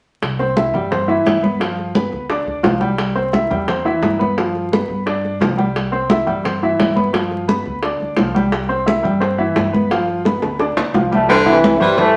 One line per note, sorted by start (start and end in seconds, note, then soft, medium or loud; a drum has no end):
0.22 0.71 C2 medium
0.22 high bongo medium
0.22 high conga soft
0.39 0.54 C4 medium
0.39 0.54 C5 medium
0.39 0.54 C6 medium
0.39 high conga soft
0.57 0.71 E4 medium
0.57 0.71 E5 medium
0.57 0.71 E6 medium
0.57 high bongo medium
0.57 high conga medium
0.74 1.22 G2 loud
0.74 0.88 G3 medium
0.74 0.88 G4 medium
0.74 0.89 G5 medium
0.74 low conga medium
0.91 1.05 C4 medium
0.91 1.06 C5 medium
0.91 1.06 C6 medium
0.91 high bongo medium
0.91 high conga soft
0.91 low conga medium
1.08 1.37 E3 medium
1.08 1.37 E4 medium
1.08 1.37 E5 medium
1.08 high conga soft
1.25 2.06 G2 medium
1.25 high bongo medium
1.25 low bongo medium
1.25 high conga medium
1.42 1.57 B3 medium
1.42 1.57 B4 medium
1.42 1.58 B5 medium
1.42 high conga medium
1.60 1.89 F3 medium
1.60 1.89 F4 medium
1.60 1.89 F5 medium
1.60 high bongo medium
1.60 high conga soft
1.79 high bongo soft
1.79 high conga soft
1.95 2.24 B3 medium
1.95 2.24 B4 medium
1.95 2.24 B5 medium
1.95 high bongo medium
1.95 high conga medium
2.12 2.44 D2 medium
2.12 high bongo soft
2.12 high conga soft
2.30 2.58 D4 medium
2.30 2.58 D5 medium
2.30 2.59 D6 medium
2.30 high bongo medium
2.30 high conga soft
2.46 2.62 D2 medium
2.46 high bongo soft
2.46 high conga soft
2.63 3.45 C2 medium
2.63 2.78 F3 medium
2.63 2.78 F4 medium
2.63 2.78 F5 medium
2.63 high bongo medium
2.63 low bongo medium
2.63 high conga medium
2.81 3.10 G3 medium
2.81 3.10 G4 medium
2.81 3.10 G5 medium
2.81 high conga medium
2.98 high bongo medium
2.98 high conga soft
3.15 3.30 C4 medium
3.15 3.30 C5 medium
3.15 3.30 C6 medium
3.15 high conga soft
3.33 3.48 E4 medium
3.33 3.48 E5 medium
3.33 3.48 E6 medium
3.33 high bongo medium
3.33 high conga medium
3.50 3.99 E2 loud
3.50 3.65 G3 medium
3.50 3.65 G4 medium
3.50 3.65 G5 medium
3.50 low conga medium
3.68 3.83 C4 medium
3.68 3.83 C5 medium
3.68 3.83 C6 medium
3.68 high bongo medium
3.68 high conga soft
3.68 low conga medium
3.85 4.14 E3 medium
3.85 4.14 E4 medium
3.85 4.14 E5 medium
3.85 high conga soft
4.02 4.83 G2 medium
4.02 high bongo medium
4.02 low bongo medium
4.02 high conga medium
4.19 4.34 B3 medium
4.19 4.34 B4 medium
4.19 4.34 B5 medium
4.19 high conga medium
4.37 4.66 F3 medium
4.37 4.66 F4 medium
4.37 4.66 F5 medium
4.37 high bongo medium
4.37 high conga soft
4.55 high bongo soft
4.55 high conga soft
4.72 5.01 B3 medium
4.72 5.01 B4 medium
4.72 5.01 B5 medium
4.72 high bongo medium
4.72 high conga loud
4.88 5.37 G2 medium
4.88 high bongo soft
4.88 high conga soft
5.06 5.35 D4 medium
5.06 5.35 D5 medium
5.06 5.35 D6 medium
5.06 high bongo medium
5.06 high conga soft
5.25 high bongo soft
5.25 high conga soft
5.40 6.22 C2 medium
5.40 5.55 F3 medium
5.40 5.55 F4 medium
5.40 5.55 F5 medium
5.40 high bongo medium
5.40 low bongo medium
5.40 high conga medium
5.57 5.86 G3 medium
5.57 5.87 G4 medium
5.57 5.87 G5 medium
5.57 high conga medium
5.76 high bongo medium
5.76 high conga soft
5.92 6.07 C4 medium
5.92 6.07 C5 medium
5.92 6.07 C6 medium
5.92 high conga soft
6.10 6.24 E4 medium
6.10 6.24 E5 medium
6.10 6.25 E6 medium
6.10 high bongo medium
6.10 high conga loud
6.27 6.76 G2 loud
6.27 6.41 G3 medium
6.27 6.41 G4 medium
6.27 6.41 G5 medium
6.27 low conga medium
6.44 6.59 C4 medium
6.44 6.59 C5 medium
6.44 6.59 C6 medium
6.44 high bongo medium
6.44 high conga soft
6.44 low conga medium
6.62 6.91 E3 medium
6.62 6.91 E4 medium
6.62 6.91 E5 medium
6.62 high conga soft
6.79 7.60 G2 medium
6.79 high bongo medium
6.79 low bongo medium
6.79 high conga medium
6.96 7.11 B3 medium
6.96 7.11 B4 medium
6.96 7.11 B5 medium
6.96 high conga medium
7.13 7.42 F3 medium
7.13 7.42 F4 medium
7.13 7.42 F5 medium
7.13 high bongo medium
7.13 high conga soft
7.31 high bongo soft
7.31 high conga soft
7.48 7.77 B3 medium
7.48 7.77 B4 medium
7.48 7.77 B5 medium
7.48 high bongo medium
7.48 high conga medium
7.66 7.98 D2 medium
7.66 high bongo soft
7.66 high conga soft
7.83 8.11 D4 medium
7.83 8.12 D5 medium
7.83 8.12 D6 medium
7.83 high bongo medium
7.83 high conga soft
8.00 8.16 D2 medium
8.00 high bongo soft
8.00 high conga soft
8.17 8.99 C2 medium
8.17 8.32 F3 medium
8.17 8.32 F4 medium
8.17 8.32 F5 medium
8.17 high bongo medium
8.17 low bongo medium
8.17 high conga medium
8.34 8.63 G3 medium
8.34 8.63 G4 medium
8.34 8.63 G5 medium
8.34 high conga medium
8.52 high bongo medium
8.52 high conga soft
8.69 8.83 C4 medium
8.69 8.84 C5 medium
8.69 8.84 C6 medium
8.69 high conga soft
8.86 9.01 E4 medium
8.86 9.01 E5 medium
8.86 9.01 E6 medium
8.86 high bongo medium
8.86 high conga loud
9.03 9.53 G2 loud
9.03 9.18 G3 medium
9.03 9.18 G4 medium
9.03 9.18 G5 medium
9.03 low conga medium
9.20 9.35 C4 medium
9.20 9.35 C5 medium
9.20 9.35 C6 medium
9.20 high bongo medium
9.20 high conga soft
9.38 9.67 E3 medium
9.38 9.67 E4 medium
9.38 9.67 E5 medium
9.38 high conga soft
9.56 10.37 G2 medium
9.56 high bongo medium
9.56 low bongo medium
9.56 high conga medium
9.73 9.87 B3 medium
9.73 9.88 B4 medium
9.73 9.88 B5 medium
9.73 high conga medium
9.91 10.19 F3 medium
9.91 10.19 F4 medium
9.91 10.19 F5 medium
9.91 high bongo medium
9.91 high conga soft
10.08 high bongo soft
10.08 high conga soft
10.25 10.54 B3 medium
10.25 10.54 B4 medium
10.25 10.54 B5 medium
10.25 high bongo medium
10.25 high conga medium
10.42 10.74 D2 medium
10.42 high bongo medium
10.42 high conga soft
10.59 10.88 D4 medium
10.59 10.88 D5 medium
10.59 10.88 D6 medium
10.59 high bongo medium
10.59 high conga soft
10.77 10.93 D2 medium
10.77 low bongo loud
10.77 high conga soft
10.93 11.74 C2 medium
10.93 11.09 F3 medium
10.93 11.09 F4 medium
10.93 11.09 F5 medium
10.93 low bongo medium
10.93 high conga medium
11.11 11.29 F3 medium
11.11 11.26 G3 medium
11.11 11.28 A3 loud
11.11 11.26 G4 medium
11.11 11.26 G5 medium
11.11 low bongo medium
11.11 high conga medium
11.29 11.57 D3 loud
11.29 11.37 E3 medium
11.29 11.43 G3 medium
11.29 11.37 G3 loud
11.29 11.43 G4 medium
11.29 11.43 C5 medium
11.29 cowbell loud
11.29 high conga soft
11.46 11.75 C3 medium
11.46 11.74 E3 loud
11.46 11.74 E3 medium
11.46 11.74 E4 loud
11.46 11.75 E5 medium
11.46 high conga soft
11.64 cowbell medium
11.64 high conga loud
11.77 12.16 G2 medium
11.77 11.94 G3 medium
11.77 11.81 A3 medium
11.77 11.94 G4 medium
11.77 11.94 C5 medium
11.77 low conga medium
11.81 12.09 E3 medium
11.81 11.98 E3 medium
11.81 11.99 G3 loud
11.97 12.16 E3 medium
11.97 12.11 G3 medium
11.97 12.16 A3 loud
11.97 12.12 G4 medium
11.97 12.12 C5 medium
11.97 cowbell loud
11.97 high conga soft
11.97 low conga medium